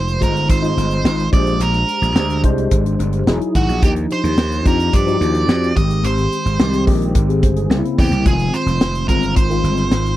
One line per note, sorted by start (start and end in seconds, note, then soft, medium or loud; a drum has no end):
0.00 0.17 F1 medium
0.00 0.20 G#3 medium
0.00 0.20 D#4 medium
0.00 0.21 F4 medium
0.00 0.21 C5 medium
0.00 0.23 C5 medium
0.08 closed hi-hat soft
0.20 0.50 G1 medium
0.20 0.51 G#3 medium
0.20 0.51 D#4 medium
0.20 0.51 F4 medium
0.20 0.49 A#4 medium
0.20 0.51 C5 medium
0.20 kick medium
0.20 closed hi-hat medium
0.37 closed hi-hat soft
0.49 0.72 G#1 medium
0.49 1.29 C5 medium
0.49 kick medium
0.49 closed hi-hat medium
0.62 1.30 G#3 medium
0.62 1.32 D#4 medium
0.62 1.32 F4 medium
0.62 1.32 D#5 medium
0.62 closed hi-hat soft
0.77 1.00 G1 medium
0.77 snare soft
0.77 closed hi-hat medium
0.91 closed hi-hat soft
1.04 1.27 G#1 medium
1.04 snare loud
1.20 closed hi-hat soft
1.32 1.55 A#1 medium
1.32 1.99 G#3 medium
1.32 1.99 D4 medium
1.32 1.99 G4 medium
1.32 1.99 C5 medium
1.32 1.61 D5 medium
1.32 kick medium
1.32 closed hi-hat medium
1.47 closed hi-hat medium
1.60 1.83 A#1 medium
1.60 2.40 A#4 medium
1.60 closed hi-hat loud
1.74 closed hi-hat soft
1.89 closed hi-hat medium
2.02 2.13 A#1 medium
2.02 closed hi-hat soft
2.15 2.43 D2 medium
2.15 2.35 G#3 medium
2.15 2.35 D4 medium
2.15 2.36 G4 medium
2.15 2.36 C5 medium
2.15 snare loud
2.30 closed hi-hat medium
2.43 2.66 C2 medium
2.43 3.23 G#3 medium
2.43 3.23 D4 medium
2.43 3.24 G4 medium
2.43 3.24 C5 medium
2.43 kick medium
2.43 closed hi-hat medium
2.58 closed hi-hat soft
2.71 2.94 G#1 medium
2.71 kick medium
2.71 closed hi-hat medium
2.86 closed hi-hat soft
2.99 3.22 G1 medium
2.99 closed hi-hat medium
3.13 closed hi-hat soft
3.27 3.38 E1 medium
3.27 3.71 F#3 medium
3.27 3.71 D#4 medium
3.27 3.72 E4 medium
3.27 3.72 G#4 loud
3.27 snare medium
3.41 closed hi-hat soft
3.55 3.66 G#1 medium
3.55 3.83 F#4 medium
3.55 kick medium
3.55 closed hi-hat medium
3.68 3.80 A#1 medium
3.68 closed hi-hat soft
3.82 4.05 D#2 loud
3.82 4.42 F3 medium
3.82 4.42 D4 medium
3.82 4.43 D#4 medium
3.82 3.91 G4 medium
3.82 4.43 G4 medium
3.82 kick medium
3.82 closed hi-hat medium
3.96 closed hi-hat soft
4.10 4.67 C5 medium
4.10 closed hi-hat medium
4.24 4.35 D#2 medium
4.24 closed hi-hat soft
4.37 4.60 D#2 medium
4.37 snare loud
4.52 closed hi-hat medium
4.65 4.88 F2 medium
4.65 4.95 F3 medium
4.65 4.95 D4 medium
4.65 4.95 D#4 medium
4.65 4.96 G4 medium
4.65 4.95 A#4 medium
4.65 kick medium
4.65 closed hi-hat medium
4.80 closed hi-hat soft
4.93 5.16 G2 medium
4.93 5.76 D5 medium
4.93 kick medium
4.93 closed hi-hat medium
5.06 5.76 F3 medium
5.06 5.76 D4 medium
5.06 5.76 D#4 medium
5.06 5.14 F#4 medium
5.06 closed hi-hat soft
5.14 5.76 G4 medium
5.21 5.44 D#2 medium
5.21 closed hi-hat medium
5.35 closed hi-hat soft
5.48 5.71 F2 medium
5.48 snare loud
5.64 closed hi-hat soft
5.76 5.99 G#1 medium
5.76 6.42 D#3 medium
5.76 6.43 G#3 medium
5.76 6.43 C4 medium
5.76 6.43 G4 medium
5.76 6.05 D#5 medium
5.76 kick medium
5.76 closed hi-hat medium
5.90 closed hi-hat soft
6.03 6.26 G#1 loud
6.03 6.83 C5 medium
6.03 closed hi-hat medium
6.18 closed hi-hat soft
6.32 closed hi-hat medium
6.45 6.57 G#1 medium
6.45 closed hi-hat soft
6.59 6.87 C2 medium
6.59 6.79 D#3 medium
6.59 6.79 G#3 medium
6.59 6.80 C4 medium
6.59 6.80 G4 medium
6.59 snare loud
6.73 closed hi-hat medium
6.86 7.16 A#1 medium
6.86 7.66 D#3 medium
6.86 7.66 G#3 medium
6.86 7.67 C4 medium
6.86 7.14 G4 medium
6.86 kick medium
6.86 open hi-hat medium
7.02 closed hi-hat soft
7.15 7.43 G#1 medium
7.15 7.28 G4 medium
7.15 kick medium
7.15 closed hi-hat medium
7.29 7.42 G#4 medium
7.29 closed hi-hat soft
7.43 7.66 G1 medium
7.43 7.56 C5 medium
7.43 kick medium
7.43 snare soft
7.43 closed hi-hat medium
7.56 7.83 G#4 medium
7.56 closed hi-hat soft
7.70 7.81 C2 medium
7.70 8.14 C#3 medium
7.70 8.15 A#3 medium
7.70 8.15 C4 medium
7.70 7.77 C#4 medium
7.70 snare medium
7.78 8.19 E4 medium
7.85 closed hi-hat soft
7.98 8.10 E2 medium
7.98 8.27 G4 medium
7.98 kick medium
7.98 open hi-hat medium
8.11 8.23 C2 medium
8.11 closed hi-hat soft
8.25 8.49 F1 medium
8.25 8.85 D#3 medium
8.25 8.85 G#3 medium
8.25 8.85 C4 medium
8.25 8.86 F4 medium
8.25 8.55 G#4 medium
8.25 kick loud
8.25 closed hi-hat medium
8.39 closed hi-hat soft
8.54 9.08 C5 medium
8.54 snare soft
8.54 closed hi-hat medium
8.66 8.78 F1 medium
8.66 closed hi-hat soft
8.80 9.04 F1 medium
8.80 snare loud
8.95 closed hi-hat medium
9.08 9.36 G1 medium
9.08 9.38 D#3 medium
9.08 9.38 G#3 medium
9.08 9.39 C4 medium
9.08 9.39 F4 medium
9.08 9.36 A#4 medium
9.08 kick medium
9.08 closed hi-hat medium
9.23 closed hi-hat soft
9.36 9.60 G#1 medium
9.36 10.17 C5 medium
9.36 kick medium
9.36 closed hi-hat medium
9.50 10.17 D#3 medium
9.50 10.17 G#3 medium
9.50 10.17 C4 medium
9.50 10.17 F4 medium
9.50 closed hi-hat soft
9.64 9.87 G1 medium
9.64 closed hi-hat medium
9.77 closed hi-hat soft
9.91 10.15 G#1 medium
9.91 snare medium
10.06 closed hi-hat soft